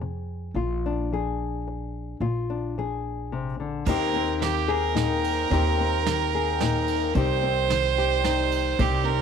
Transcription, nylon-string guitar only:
Already playing: G#3 C4 G#4
0.01 C3
0.55 A#2 F4
0.86 D4
1.13 F3 G#4
1.68 F2
2.21 A#2 F4
2.50 D4
2.78 F3 G#4
3.32 C3
3.60 D3
3.87 D#2 C4 D#4 G4
4.16 C4
4.41 D#3
4.68 G#4
4.95 A#2 D#4
5.51 D#2 C4 D#4 G4
5.80 C4
6.08 D#3
6.35 G#4
6.62 A#2 D#4
7.15 C3 C4 D#4 G4
7.43 C4
7.72 D#3
7.98 G4
8.24 G2 D#4
8.79 C3 C4 D#4 G4
9.07 C4

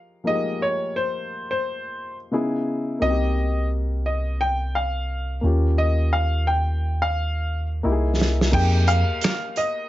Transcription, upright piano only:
Already playing: F3 A#3 D#4 G4 G#4
0.24 F3 A#3 D#4 G4
0.28 G#4
0.35 A#4
2.31 C#3 B3 D#4 E4 G#4
2.99 A#3 C4 D#4
3.04 F#4
3.10 G4
5.41 A#3 C#4 F4
5.46 G4
7.83 A#3 D#4 E4 G4
7.92 G#4
8.51 A#3 D#4 G4
8.56 G#4

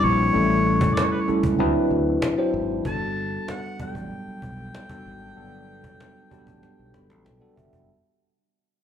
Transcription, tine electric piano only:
Already playing: G3 C4 D4 E4 G4 B4
0.33 G3 A3 C#4 E4 A4
1.28 G3 A3 C#4 E4 A4
1.59 F#3 C4 D4 E4 B4
2.38 F#3 C4 D4 E4 C5
2.84 G3 B3 D4 F#4 A4
3.80 F#3 G3 B3 D4 G4
3.87 A4
4.90 G3 B3 D4 F#4 A4
5.36 F#3 G3 B3 D4 A4
6.31 F#3 G3 B3 D4 G4
6.38 A4
6.94 B5
7.10 A5
7.25 G5
7.40 G3 B3 D4 F#4 A4 F#5
7.56 E5

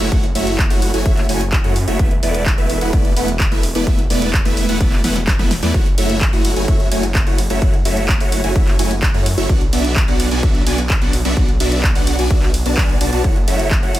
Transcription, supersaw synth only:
0.00 A3 E4 F#4 C#5 E5
0.12 A3 E4 F#4 C#5 F#5
0.35 A3 E4 F#4 C#5 E5
0.70 A3 E4 F#4 C#5 F#5
0.94 A3 E4 F#4 C#5 G#5
1.05 A3 E4 F#4 C#5 E5
1.29 A3 E4 F#4 C#5 G#5
1.64 A3 E4 F#4 C#5 F#5
1.88 A3 E4 F#4 C#5 E5
1.99 A3 B3 E4 B4 E5
2.23 A3 B3 E4 B4 D5
2.58 A3 B3 E4 B4 E5
2.81 A3 B3 E4 B4 F#5
2.93 A3 B3 E4 D5
3.16 A3 B3 E4 B4 F#5
3.52 A3 B3 E4 B4 E5
3.75 A3 B3 E4 B4 D5
3.87 A3 B3 E4 B4 E5
4.10 A3 B3 E4 B4 D5
4.45 A3 B3 E4 B4 E5
4.69 A3 B3 E4 B4 F#5
4.81 A3 B3 E4 B4 D5
5.04 A3 B3 E4 B4 F#5
5.39 A3 B3 E4 B4 E5
5.63 A3 B3 E4 B4 D5
5.74 A3 E4 F#4 F#5
5.98 A3 E4 F#4 C#5 E5
6.33 A3 E4 F#4 C#5 F#5
6.56 A3 E4 F#4 C#5 G#5
6.68 A3 E4 F#4 C#5 E5
6.91 A3 E4 F#4 C#5 G#5
7.27 A3 E4 F#4 C#5 F#5
7.50 A3 E4 F#4 C#5 E5
7.62 A3 F#4 F#5
7.85 A3 E4 F#4 C#5 E5
8.21 A3 E4 F#4 C#5 F#5
8.44 A3 E4 F#4 C#5 G#5
8.56 A3 E4 F#4 C#5 E5
8.79 A3 E4 F#4 C#5 G#5
9.14 A3 E4 F#4 C#5 F#5
9.38 A3 E4 F#4 C#5 E5
9.49 B3 D4 F#4 D5 F#5
9.73 B3 D4 F#4 D5 E5
10.08 B3 D4 F#4 D5 F#5
10.31 B3 D4 F#4 D5 G#5
10.43 B3 D4 F#4 E5
10.67 B3 D4 F#4 D5 G#5
11.02 B3 D4 F#4 D5 F#5
11.25 B3 D4 F#4 D5 E5
11.37 B3 D4 F#4 D5
11.60 B3 D4 F#4 D5 E5
11.96 B3 D4 F#4 D5 F#5
12.19 B3 D4 F#4 D5 G#5
12.30 B3 D4 F#4 D5 E5
12.66 B3 D4 F#4 D5 A5
12.78 B3 D4 D5 G#5
13.01 B3 D4 F#4 D5 A5
13.13 B3 D4 F#4 D5 A5
13.24 A3 E4 F#4 C#5 F#5
13.48 A3 E4 F#4 C#5 E5
13.83 A3 E4 F#4 C#5 F#5

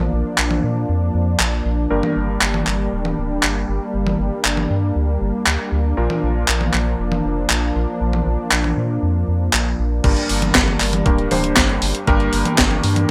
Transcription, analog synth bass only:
0.13 A#1
0.38 A#1
0.63 A#2
0.89 F2
1.14 F2
1.40 A#1
1.65 A#1
1.90 G1
2.16 G1
2.41 G1
2.66 G1
2.92 D1
3.17 D1
3.43 G1
3.68 G1
3.94 G1
4.19 G1
4.45 G1
4.70 G2
4.96 D2
5.21 G1
5.46 D2
5.72 D2
5.97 A#1
6.23 A#1
6.48 A#1
6.73 A#1
6.99 F1
7.24 F1
7.50 A#1
7.75 A#1
8.00 A#1
8.26 A#1
8.52 A#1
8.77 A#2
9.02 F2
9.28 F2
9.53 A#1
9.79 A#1
10.04 G1
10.30 G1
10.55 G1
10.80 G1
11.06 D1
11.31 D1
11.57 G1
11.82 G1
12.08 G1
12.33 G1
12.58 G1
12.84 G2

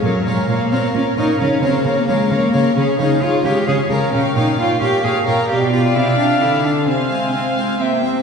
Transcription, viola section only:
0.03 A#4
0.26 A#4
0.49 A#4
0.71 A#4
0.94 A#4
1.17 A#4
1.40 A#4
1.63 A#4
1.85 A#4
2.08 A#4
2.31 A#4
2.53 A#4
2.76 G#4
2.99 G#4
3.22 G#4
3.45 G#4
3.68 G#4
3.90 G#4
4.13 C#5
4.36 C#5
4.58 C#5
4.81 C#5
5.04 C#5
5.27 C#5
5.49 D5
6.87 C5
7.80 C5

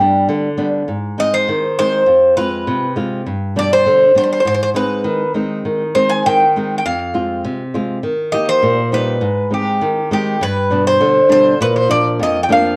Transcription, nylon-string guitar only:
Already playing: G2
0.00 G3 B3 D4
0.29 D3
0.58 G3 B3 D4
0.88 G#2
1.18 G#3 C4 D#4
1.48 D#3
1.79 G#3 C4 D#4
2.06 F2
2.36 G#3 C4 F4
2.67 C3
2.96 G#3 C4 F4
3.26 G2
3.56 B2 G3 D4
3.86 D3
4.15 G3 B3 D4
4.45 G#2
4.74 G#3 C4 D#4
5.04 D#3
5.34 G#3 C4 D#4
5.65 D#3
5.95 G#3 C4 D#4
6.27 D#3
6.56 G#3 C4 D#4
6.86 F2
7.14 G#3 C4 F4
7.45 C3
7.74 G#3 C4 F4
8.03 D#3
8.33 A#3 D#4 G4
8.63 A#2
8.92 G3 D#4 G4
9.21 G#2
9.51 G#3 C4 D#4
9.81 D#3
10.11 G#3 C4 D#4
10.41 G2
10.70 B2 G3 D4
11.00 D3
11.29 B2 G3 D4
11.61 A#2
11.89 F3 A#3 D4
12.20 F2
12.49 F3 A#3 D4

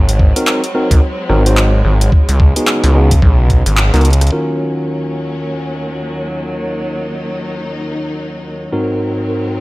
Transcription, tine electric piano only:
0.36 C4 D#4 F#4 A#4
0.75 C4 D#4 F#4 A#4
1.29 C4 D#4 F#4 A#4
1.46 C4 D#4 F#4 C5
2.56 B3 D#4 F#4 G#4
2.95 B3 D#4 F#4 G#4
3.94 B3 D#4 F#4 A#4
4.32 D#3 C#4 F4 F#4 A#4
8.73 G#2 C4 D#4 F#4 A#4

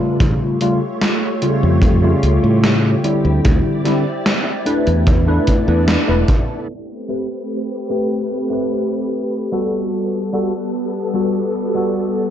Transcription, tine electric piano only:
Already playing: C#3 G3 A3 F4
0.60 C#3 G3 A3 F4
1.41 C#3 G3 A3 F4
2.02 C#3 G3 A3 F4
3.03 D3 G3 C4 E4
3.84 D3 G3 C4 E4
4.65 A3 D4 E4 B4
5.27 A3 D4 E4 B4
5.67 A3 D4 E4 B4
6.07 A3 D4 E4 B4
7.08 A3 C4 G4 B4
7.90 A3 C4 G4 B4
8.50 A3 C4 G4 B4
9.52 G3 B3 F#4 A4
10.33 G3 B3 F#4 A4
11.14 G3 B3 F#4 A4
11.74 G3 B3 F#4 A4

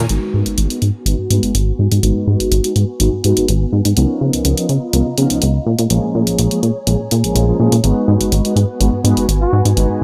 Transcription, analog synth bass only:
0.10 G#1
0.34 G#2
0.46 G#1
0.58 G#1
0.82 G#2
1.06 G#1
1.19 G#2
1.30 G#2
1.43 G#1
1.55 G#1
1.79 G#2
1.92 G#2
2.03 G#1
2.16 G#2
2.27 G#2
2.40 G#1
2.51 G#1
2.76 G#2
3.00 G#1
3.13 G#2
3.25 G#2
3.37 G#1
3.49 G#1
3.73 G#2
3.85 G#2
3.97 C#2
4.21 C#3
4.34 C#2
4.45 C#2
4.69 C#3
4.93 C#2
5.07 C#3
5.18 C#3
5.31 C#2
5.42 C#2
5.66 A#2
5.79 A#2
5.91 A#1
6.04 A#2
6.15 A#2
6.27 A#1
6.39 A#1
6.63 A#2
6.87 A#1
7.00 A#2
7.12 A#2
7.24 A#1
7.35 A#1
7.60 A#2
7.72 A#2
7.84 G#1
8.08 G#2
8.20 G#1
8.32 G#1
8.56 G#2
8.80 G#1
8.93 G#2
9.04 G#2
9.17 G#1
9.29 G#1
9.53 G#2
9.65 G#2
9.77 G#1
9.90 G#2

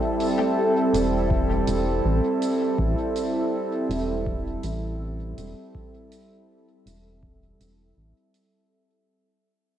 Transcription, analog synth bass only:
0.94 E1
1.67 E1
2.04 A1
2.78 A1
3.90 E1
4.64 A1
5.38 E1
6.86 E1
7.60 E1
7.97 A1

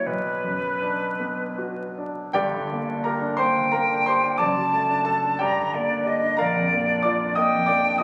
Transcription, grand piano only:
0.06 B1
0.44 F#2
0.82 D4
1.20 B3
1.58 F#4
1.98 D4
2.33 G1 G2 G4 D5 G5
2.54 D3
2.71 A#3
2.89 D4
3.04 G4 A#4 A#5
3.22 D4
3.37 A#3 C5 C6
3.56 D3
3.71 A#3 A#4 A#5
3.91 D4
4.06 G4 C5 C6
4.24 D4
4.38 F#1 F#2 D5 A5 D6
4.58 F#3
4.73 A3
4.90 D4
5.05 A4 A5
5.24 D4
5.39 G2 G4 D5 G5
5.57 D3
5.75 A#3
5.89 D4
6.06 G4
6.23 D4
6.37 A#1 A#4 F5 A#5
6.55 F2
6.73 A#3
6.88 D4
7.03 F4 D5 D6
7.21 D4
7.35 A#3 D#5 D#6
7.52 F2
7.66 A#3 D5 D6
7.85 D4
7.98 D#5 D#6

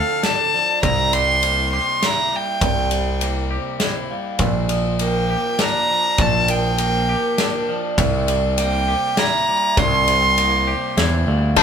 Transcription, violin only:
Already playing: F5
0.24 A5
0.83 A#5
1.13 C6
1.73 C6
2.05 A#5
2.35 G5
5.02 G5
5.61 A#5
6.21 A5
6.50 G5
8.59 G5
9.19 A#5
9.78 C6
11.58 A5

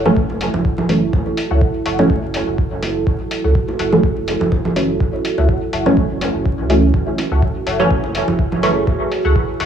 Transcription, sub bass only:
Already playing: F#1
0.30 F#1
0.54 F#1
0.78 F#1
1.13 F#1
1.51 C#2
1.86 F#1
2.23 F#1
2.47 F#1
2.72 F#1
3.07 F#1
3.44 C#2
3.79 F#1
4.17 F#1
4.41 F#1
4.65 F#1
5.00 F#1
5.38 C#2
5.73 F#1
6.10 F#1
6.35 F#1
6.59 C#2
6.94 F#1
7.31 C#2
7.66 F#1
8.04 F#1
8.28 F#1
8.52 F#1
8.87 F#1
9.25 C#2
9.60 F#1

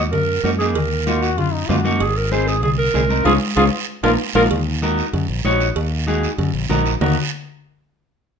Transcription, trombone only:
1.06 F4
1.23 F#4
1.38 F4
1.53 D#4
1.69 F#4
3.24 F4
3.56 F4
4.03 F4
4.35 F4
7.01 F#4

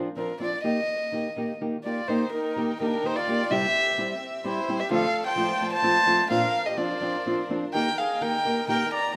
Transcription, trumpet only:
1.84 F4
2.09 D#4
2.34 D#4
2.81 D4
3.05 D#4
3.17 F4
3.53 G4
4.44 E4
4.80 G4
4.92 A4
5.26 C5
5.72 C5
6.32 A#4
6.66 G4
6.78 F4
7.73 A#4
7.99 G#4
8.22 A#4
8.68 A#4
8.92 D5

